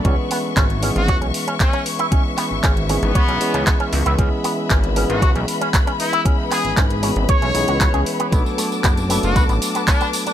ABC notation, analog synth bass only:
X:1
M:4/4
L:1/16
Q:1/4=116
K:C#phr
V:1 name="Analog synth bass" clef=bass
C,, z3 G,,,3 G,,, C,, B,,, z6 | z3 G,,, G,,,3 G,,, z B,,, z C,, z2 C,, C,, | C,, z3 G,,,3 G,,, C,, B,,, z6 | z3 G,,, G,,,3 G,,, z B,,, B,,, C,,2 C,, z2 |
B,,, z3 F,,,3 F,,, B,,, A,,, z6 |]